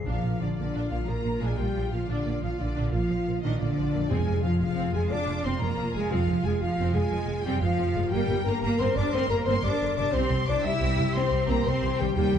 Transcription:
Already playing: A#2 F3 D4
0.02 F3 A#4
0.06 A#1 D4 F4 F5
0.24 A#1 A#3
0.40 A#1 D3 F3 D4 D5
0.57 A#1 D3 A#3 D4 D5
0.74 A#1 D4
0.91 A#1 F3 A#3 F4 F5
1.07 A#1 F3 A#3 A#4 A#5
1.24 A#1 A#3
1.41 A#1 G#3 D4 G#4 G#5
1.58 A#1 G3 A#3 G4 G5
1.75 A#1 F3
1.91 A#1 F3 A#3 F4 F5
2.09 A#1 D3 D4 D5
2.26 A#1 A#3
2.42 A#1 F3 F4 F5
2.59 A#1 D3 A#3 D4 D5
2.75 A#1 D4
2.91 A#1 F3 A#3 F4 F5
3.09 A#1 F3
3.26 A#1 A#3
3.43 A#1 D#3 D4 D#4 D#5
3.59 A#1 D3 A#3 D4 D5
3.76 A#1 F3
3.92 A#1 F2 A#3
3.97 F3
4.02 C4
4.06 C4 F4 C5
4.10 F1 F2 G#3 G#4 G#5
4.27 F1 G#3
4.43 F1 F3 F4 F5
4.60 F1 F3 G#3 F4 F5
4.76 F1 C4
4.94 F1 G#3 G#4 G#5
5.10 F1 F3 D4 D5 D6
5.28 F1 G#3
5.44 F1 C4 C5 C6
5.60 F1 G#3 A#3 A#4 A#5
5.77 F1 F3
5.94 F1 G#3 G#4 G#5
6.10 F1 F3 C4 F4 F5
6.27 F1 G#3
6.43 F1 F3 G#3 G#4 G#5
6.61 F1 F3 G#3 F4 F5
6.77 F1 C4
6.94 F1 G#3 G#4 G#5
7.11 F1 F3
7.27 F1 G#3
7.44 F1 G3 C4 G4 G5
7.61 F1 F3 G#3 F4 F5
7.77 F1 F3
7.94 F1 G2 G#3
7.99 A#3
8.03 G4
8.08 A#4
8.12 G1 G3 A#3 G4 A#4 G5
8.29 G1 G3
8.44 G1 D3 A#3 A#4 A#5
8.61 G1 G3 A#3 A#4 A#5
8.79 G1 A#3 C4 C5 C6
8.96 G1 G3 D4 D5 D6
9.13 G1 D3 C4 C5 C6
9.29 G1 G3 A#3 A#4 A#5
9.46 G1 A#3 C4 C5 C6
9.63 G1 G3 D4 D5 D6
9.81 G1 D3
9.96 G1 C3 G3 D4 D5 D6
10.00 G3
10.05 G4
10.09 C5
10.14 C2 C4 G4 C6
10.31 C2 G3
10.47 C2 E3 D4 D5 D6
10.63 C2 G3 E4 E5 E6
10.80 C2 C4
10.97 C2 G3
11.14 C2 E3 C4 C5 C6
11.31 C2 G3
11.48 C2 A#3 C4 A#4 A#5
11.64 C2 G3 C4 C5 C6
11.82 C2 E3
11.98 C2 D#3 G3 G4 G5
12.03 G3
12.07 G4
12.12 D#2 A#4 G5
12.16 G3 A#3 G4
12.33 D#2 G3

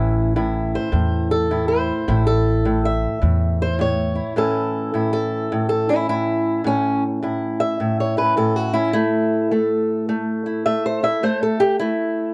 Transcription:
Already playing: A1 A2 E3 C#4 E4 E5
0.36 A2 E4
0.75 C5
0.92 E2 A2
1.31 A4
1.51 A2 E4
1.68 C5
2.08 A1 A2 E4
2.27 A4
2.65 A2
2.85 E5
3.22 E2 A2
3.62 C5
3.79 A2 C#5
4.15 E4
4.36 A2 E3 C#4 E4 A4
4.94 A2 E4
5.13 A4
5.52 A2
5.69 A4
5.89 C#4 E4
6.09 A2 E4
6.64 A2 C#4
7.23 A2 E4
7.60 E5
7.80 A2
8.00 C#5
8.17 C#4 B4
8.37 A2 A4
8.56 F#4
8.73 C#4 E4
8.93 A3 E4
9.51 A3 A4
10.09 A3
10.46 E4
10.66 A3 E5
10.86 C5
11.03 E4 E5
11.23 A3 C5
11.43 A4
11.60 G4
11.79 A3 E4

